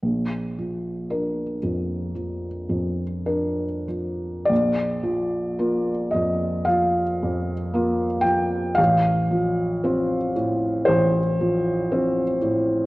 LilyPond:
<<
  \new Staff \with { instrumentName = "Felt piano" } { \time 4/4 \key bes \major \tempo 4 = 57 r1 | d''4. ees''8 f''4. g''8 | f''2 c''2 | }
  \new Staff \with { instrumentName = "Felt piano" } { \clef bass \time 4/4 \key bes \major bes,,8 f8 <d' bes'>8 f,8 f8 f,8 <d' bes'>8 f8 | bes,,8 f8 <bes f'>8 f,8 f8 f,8 <bes f'>8 f8 | a,,8 f8 <c' f'>8 a,8 a,,8 f8 <c' f'>8 a,8 | }
>>